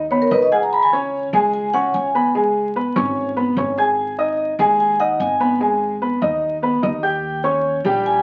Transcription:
Already playing: D#2
0.11 B3 B4 C#5 B5
0.22 A#4
0.31 C#2 D#4 B4 D#5 D#6
0.42 D#5
0.52 G#4 F#5 G#5 G#6
0.63 A#5
0.73 B5
0.83 G#5
0.93 C#4 C#5 C#6
1.33 C#2 G#3 G#4 G#5
1.53 G#5
1.74 C#4 C#5 F#5 C#6
1.94 C#2 G#5
2.15 B3 B4 B5
2.35 G#3 G#4 G#5
2.76 B3 B4 B5
2.96 G#1 C#4 C#5 C#6
3.36 B3 B4 B5
3.57 G#1 C#4 C#5 C#6
3.78 G#4 G#5 G#6
4.18 D#4 D#5 D#6
4.59 D#2 G#3 G#4 G#5
4.80 G#5
5.00 D#4 D#5 F#5 D#6
5.20 G#1 G#5
5.40 B3 B4 B5
5.60 G#3 G#4 G#5
6.02 B3 B4 B5
6.22 D#2 D#4 D#5 D#6
6.62 B3 B4 B5
6.82 D#2 D#4 D#5 D#6
7.03 G4 G5 G6
7.44 C#4 C#5 C#6
7.84 A#1 G3 G4 G5
8.06 G#5

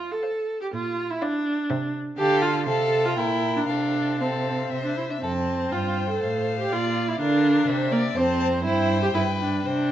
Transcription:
Already playing: F4 C5
0.12 A4
0.23 C5 F5
0.61 G4
0.73 A#2 F4
1.11 E4
1.22 D4 D5 F5
1.70 C3 C5 E5
2.18 D3 G4 A4 F5
2.42 F4
2.66 C3 A4 F5
3.05 F4
3.16 A#2 E4 A#4 G5
3.57 D4
3.67 C3 D4 A4 F5
4.21 C4 A4 F5
4.70 C3 C5 E5
4.85 D4
4.97 E4
5.10 D4 E5
5.22 F2 C4 A4 A5
5.48 C5
5.72 G2 F4 G5
6.10 A4
6.23 A2 F5
6.60 G4
6.71 A#2 F4 D5
7.08 E4
7.20 D3 D4 A#4 F5
7.68 C3 C5 E5
7.92 A#3 D5
8.16 F2 C4 C5 A5
8.39 A5
8.64 G2 E4 C5 G5
9.02 G4
9.14 G2 E4 B4
9.41 D4
9.66 C3 D4 C5 G5

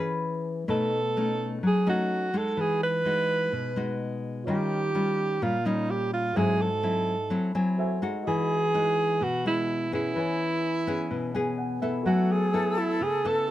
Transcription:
Already playing: E3 C#4 G#4
0.00 B4
0.68 B2 A3 C#4 D#4 A4
1.17 A3 C#4 D#4
1.63 F#3 G#4
1.86 A3 C#4 D#4 F#4
2.34 G#3 D#4 F#4 A4
2.57 E3 G#4
2.83 B4
3.05 G#3 D#4 F#4
3.52 B2
3.76 G#3 D#4 F#4
4.44 D#3 F4 C#5 D#5
4.48 G3 C#4 F4 G4 G5
4.95 G3 C#4 F4
5.42 A#2 G3 C#4 F4
5.65 G3 C#4 D#4 F4
5.90 G4
6.13 F4
6.33 G#2 F#3 F#4 G#4 A4 C5
6.37 C4 E4 E5 G#5
6.61 A4
6.83 F#3 C4 E4
7.30 F#3 C4 E4
7.55 F#3 C4 E4 G#5
7.78 F#4 A4 C5 E5 G#5
8.02 G#3 D#4 F#4
8.23 E4 F#4 D#5
8.27 E3 G#4 G#5
8.74 G#3 D#4 F#4
9.21 B2 F#4
9.45 G#3 E4 F#4
9.92 B3 C#4 E4 G#4
10.13 E3 E4 B4
10.17 C#5 G#5
10.87 B3 C#4 G#4
11.11 B2
11.34 B3 C#4 G#4 G#5
11.58 F#5
11.82 B3 E4 A4 E5
12.02 F#3 A3 F#4 A4 B4
12.06 F#4 E5 G#5
12.31 G#4
12.54 B3 E4 A4
12.78 E4
13.01 C#3 G#4
13.25 B3 E4 A4

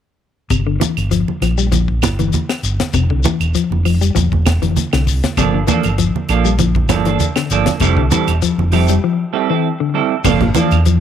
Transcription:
0.50 G1 C3, kick, closed hi-hat, claves, shekere
0.67 D3
0.80 E3, closed hi-hat, high conga, shekere
0.97 G1, closed hi-hat, claves, shekere
1.11 F3, closed hi-hat, shekere
1.28 muted fingered electric bass stroke, high conga
1.41 A#1 F3, snare, closed hi-hat, claves, shekere
1.58 G3, shekere
1.72 F3, kick, closed hi-hat, high conga, shekere
1.88 kick
2.02 G1, kick, snare, closed hi-hat, high conga, claves, shekere
2.19 E3, closed hi-hat, high conga, shekere
2.33 closed hi-hat, high conga, shekere
2.49 snare, claves
2.63 G1, closed hi-hat, shekere
2.80 snare, closed hi-hat, high conga, shekere
2.93 F1 C3, kick, closed hi-hat, claves, shekere
3.10 C2 D3, kick
3.24 E3, muted fingered electric bass stroke, closed hi-hat, high conga, shekere
3.40 E1, closed hi-hat, claves, shekere
3.55 F3, closed hi-hat, shekere
3.70 F1, high conga
3.85 F3, open hi-hat, claves, shekere
4.01 G3, closed hi-hat, shekere
4.15 E1 F3, kick, closed hi-hat, high conga, shekere
4.32 E1, kick, high conga
4.46 snare, closed hi-hat, high conga, claves, shekere
4.62 F1 E3, closed hi-hat, high conga, shekere
4.77 closed hi-hat, high conga, shekere
4.93 C2 D3, snare, claves
5.07 kick, open hi-hat, shekere
5.23 snare, closed hi-hat, high conga, shekere
5.37 G1 C3 F3 A#3 D4 A4, kick, closed hi-hat, claves, shekere
5.54 D3
5.67 E3 F3 A#3 D4 A4, closed hi-hat, high conga, shekere
5.83 G1, closed hi-hat, claves, shekere
5.98 F3, closed hi-hat, shekere
6.14 muted fingered electric bass stroke, high conga
6.29 A#1 F3 A#3 D4 A4, closed hi-hat, claves, shekere
6.45 G3, shekere
6.59 F3, kick, closed hi-hat, high conga, shekere
6.75 kick, high conga
6.89 G1 F3 A#3 D4 A4, kick, snare, closed hi-hat, high conga, claves, shekere
7.05 E3 A#3 D4 A4, closed hi-hat, shekere
7.20 closed hi-hat, high conga, shekere
7.36 D3, snare, claves
7.50 G1 F3 A#3 D4 A4, closed hi-hat, shekere
7.66 snare, closed hi-hat, high conga, shekere
7.80 F1 C3 G3 C4 E4 A4, kick, closed hi-hat, claves, shekere
7.97 C2 D3, kick
8.10 E3 G3 C4 E4 A4, muted fingered electric bass stroke, closed hi-hat, high conga, shekere
8.27 E1, closed hi-hat, claves, shekere
8.42 F3, closed hi-hat, shekere
8.58 F1, high conga
8.72 F3 G3 C4 E4 A4, open hi-hat, claves, shekere
8.88 G3, closed hi-hat, shekere
9.04 F3
9.33 G3 C4 E4 A4
9.49 E3 C4 E4 A4
9.80 D3
9.94 G3 C4 E4 A4
10.24 G1 C3 F3 A#3 D4 A4, kick, crash, low conga, claves, shekere
10.41 A#2, kick, closed hi-hat, low conga
10.55 E3 F3 A#3 D4 A4, closed hi-hat, high conga, shekere
10.71 E2, closed hi-hat, claves, shekere
10.85 F3, closed hi-hat, shekere

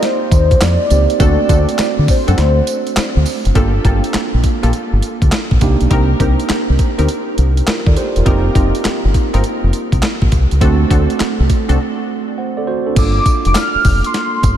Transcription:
Already playing: A#3 C4 D#4 G4
0.03 C5, snare, closed hi-hat
0.32 D#2, kick, closed hi-hat, tambourine
0.51 kick, closed hi-hat
0.61 F2 D5, snare, clap, closed hi-hat, tambourine
0.90 C#2 A#3 C4 D#4 G4, closed hi-hat, tambourine
1.10 closed hi-hat
1.19 D2 A3 C4 D4 F#4 A4 D5, kick, closed hi-hat, tambourine
1.49 D2 C4 D4 F#4 A4, kick, closed hi-hat, tambourine
1.69 closed hi-hat
1.79 muted fingered electric bass stroke, snare, clap, closed hi-hat, tambourine
1.99 D3
2.08 C5, kick, open hi-hat, tambourine
2.27 F#2 C4 D4 F#4 A4, closed hi-hat
2.38 D2, snare, closed hi-hat
2.67 closed hi-hat, tambourine
2.87 closed hi-hat
2.97 muted fingered electric bass stroke, snare, clap, closed hi-hat, tambourine
3.16 D2
3.26 open hi-hat, tambourine
3.45 F#1, closed hi-hat
3.54 G1 A#3 D4 F4 G4 A4, kick, closed hi-hat
3.84 G1 A#3 F4 G4 A4, kick, closed hi-hat
4.04 closed hi-hat
4.14 muted fingered electric bass stroke, snare, clap, closed hi-hat
4.34 A#1
4.44 kick, closed hi-hat
4.63 A#1 A#3 F4 G4 A4, closed hi-hat
4.73 closed hi-hat
4.93 G1
5.02 closed hi-hat
5.22 D2, kick, closed hi-hat
5.32 snare, clap, closed hi-hat
5.51 A#1, kick
5.60 C2 A#3 D4 D#4 G4, kick, closed hi-hat
5.81 B1, closed hi-hat
5.90 C2 C4 D#4 G4 A#4, kick, closed hi-hat
6.20 C2 C4 D#4 G4 A#4, kick, closed hi-hat
6.40 closed hi-hat
6.49 muted fingered electric bass stroke, snare, clap, closed hi-hat
6.70 C2
6.79 kick, closed hi-hat
6.98 D2 C4 D#4 G4 A#4, closed hi-hat
7.09 closed hi-hat
7.38 C2, closed hi-hat
7.57 closed hi-hat
7.67 F4 A#4, muted fingered electric bass stroke, snare, clap, closed hi-hat
7.87 D#2 A4 D5, kick
7.96 G4 C5, closed hi-hat
8.16 E1 F4 A#4, closed hi-hat
8.25 F1 A#3 C4 D#4 F4 G4 A#4, kick, closed hi-hat
8.55 F1 C4 D#4 F4 A#4, kick, closed hi-hat
8.75 closed hi-hat
8.85 muted fingered electric bass stroke, snare, clap, closed hi-hat
9.05 G1
9.14 kick, closed hi-hat
9.33 G1 C4 D#4 F4 A#4, closed hi-hat
9.44 closed hi-hat
9.64 F1
9.73 closed hi-hat
9.92 C2, kick, closed hi-hat
10.03 snare, clap, closed hi-hat
10.22 A#1, kick
10.32 C2, kick, closed hi-hat
10.51 C#2, closed hi-hat
10.60 D2 A3 C4 D4 F#4 A4, kick, closed hi-hat
10.90 D2 C4 D4 F#4 A4, kick, closed hi-hat
11.10 closed hi-hat
11.20 muted fingered electric bass stroke, snare, clap, closed hi-hat
11.40 C2
11.50 kick, closed hi-hat
11.69 C2 C4 D4 F#4 A4, closed hi-hat
12.38 C5 F#5
12.57 A4 D5
12.67 F#4 C5
12.87 D4 A4
12.95 G1 A#3 D4 F4 A4 D6, kick, closed hi-hat, crash, tambourine
13.26 kick, closed hi-hat, tambourine
13.45 F1 D6, closed hi-hat
13.55 F6, snare, clap, closed hi-hat, tambourine
13.75 muted fingered electric bass stroke
13.85 F1, kick, open hi-hat, tambourine
14.04 C6, closed hi-hat
14.14 snare, closed hi-hat
14.43 G1, kick, closed hi-hat, tambourine

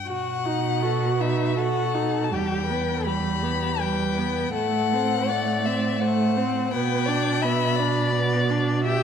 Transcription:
0.07 B2 F#4 F#5
0.45 D#4
0.81 F#4 A4
1.17 D#4 B4
1.21 E5
1.56 F#4 A4 F#5
1.95 D#4
2.24 A5
2.32 E2 G3 G4 G5
2.67 B3 B4
3.05 G3 G4 B5
3.43 B3
3.79 G3 B4 G5
4.18 B3
4.54 A2 A3 A4 F#5
4.93 C4
5.28 A3 D5
5.66 C4 E5
6.00 A3 C5 F#5
6.37 C4
6.72 B2 B3 B4 G5
7.06 D4 D5
7.42 B3 E5 B5
7.76 D4 D5
8.15 B3
8.51 D4
8.85 G4 E5 G5

